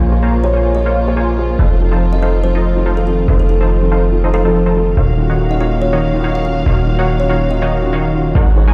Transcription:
Already playing: A#1 C#3 F3 G#3 A#3 F4 C5 C#5 G#5
0.10 A#3 F4 G#4 C#5
0.23 A#3 F4 C5 C#5 A#5
0.43 A#3 F4 G#4 C#5
0.53 A#3 F4 C5 C#5 G#5
0.74 A#3 F4 G#4 C#5 D#5
0.86 A#3 F4 C5 C#5 F5
1.06 A#3 F4 G#4 C#5
1.17 A#3 F4 C5 C#5 G#5
1.37 A#3 F4 G#4 C#5
1.59 F1 D#3 F3 A3 C4 D#4 A4 C5 F5
1.79 F3 C4 D#4 A4
1.92 F3 D#4 A4 C5 A5
2.12 F3 C4 D#4 A4 D#5
2.22 F3 D#4 A4 C5 D#5 F5
2.43 F3 C4 D#4 A4 C5
2.55 F3 D#4 A4 C5 D#5
2.75 F3 C4 D#4 A4
2.86 F3 D#4 A4 C5 F5
2.97 A4
3.06 F3 C4 D#4 A4
3.28 F1 F3 D#4 A4 C5 F5
3.39 A4
3.48 F3 C4 D#4 A4
3.61 F3 D#4 A4 C5 A5
3.81 F3 C4 D#4 A4
3.92 F3 D#4 A4 C5 F5
4.11 F3 C4 D#4 A4
4.24 F3 D#4 A4 C5 D#5
4.34 F3 D#4 A4 C5 F5
4.44 F3 C4 D#4 A4 C5 A5
4.66 F3 D#4 A4 C5 A5
4.75 F3 C4 D#4 A4
4.97 D#1 D#3 F#3 A#3 C#4 D#4 F#4 C#5 F5
5.17 D#3 C#4 F4 F#4
5.30 D#3 D#4 F#4 C#5 F#5
5.50 D#3 C#4 F4 F#4 D#5
5.60 D#3 D#4 F#4 C#5 D#5 F5
5.81 D#3 C#4 F4 F#4 C#5
5.93 D#3 D#4 F#4 C#5 D#5
6.13 D#3 C#4 F4 F#4
6.24 D#3 D#4 F#4 C#5 F5
6.35 F5
6.44 D#3 C#4 F4 F#4 F5
6.66 D#1 D#3 D#4 F#4 C#5 F5
6.86 D#3 C#4 F4 F#4
6.99 D#3 D#4 F#4 C#5 F#5
7.19 D#3 C#4 F4 F#4 C#5
7.30 D#3 D#4 F#4 C#5 F5
7.50 D#3 C#4 F4 F#4 D#5
7.62 D#3 D#4 F#4 C#5 D#5
7.82 D#3 C#4 F4 F#4
7.93 D#3 D#4 F#4 C#5 F5
8.13 D#3 C#4 F4 F#4
8.35 G#1 G#3 C#4 D#4 F#4 A#4 C#5 F#5
8.55 G#3 D#4 F#4 C#5
8.68 G#3 D#4 A#4 C#5 G#5

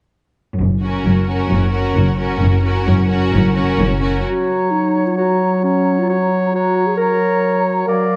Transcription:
0.60 F#1 F#2
0.82 C#4 F#4 A#4
1.05 F#1 F#2
1.27 C#4 F#4 A#4
1.50 F#1 F#2
1.72 C#4 F#4 A#4
1.96 F#1 F#2
2.17 C#4 F#4 A#4
2.42 F#1 F#2
2.64 C#4 F#4 A#4
2.87 F#1 F#2
3.09 C#4 F#4 A#4
3.33 F#1 F#2
3.54 C#4 F#4 A#4
3.79 F#1 F#2
4.01 C#4 F#4 A#4
4.25 F#3 F#4 C#5 A#5
4.71 D#4
5.06 F4
5.17 F#4 C#5 A#5
5.63 C#4 C#5 A#5
5.99 F4
6.09 F#4 C#5 A#5
6.53 F#4 C#5 A#5
6.87 G#4
6.97 A#4 C#5 A#5
7.87 F#3 A#4 D5 F5

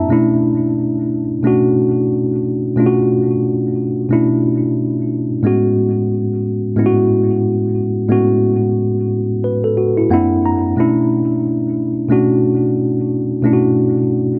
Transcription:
Already playing: F#2 A#3 C4 D4 E4 E5 A5
0.09 B2 A3 C#4 D4 E4
1.43 B2 A3 C#4 D4
1.47 F#4
2.76 B2 A3 C#4 D4
2.80 F4
2.86 F#4
4.09 B2 A3 C#4 D4 E4
5.43 A2 G#3 B3 C#4 F#4
6.76 A2 G#3 B3 C#4 E4
6.86 F#4
8.09 A2 G#3 B3 C#4 F#4
9.44 B4
9.64 A4
9.77 F#4
9.97 E4
10.10 F#2 A#3 C4 D4 E4 F#5
10.46 A#5
10.76 B2 A3 C#4 D4 E4
12.09 B2 A3 C#4 D4 F#4
13.43 B2 A3 C#4 D4
13.47 E4
13.53 F#4

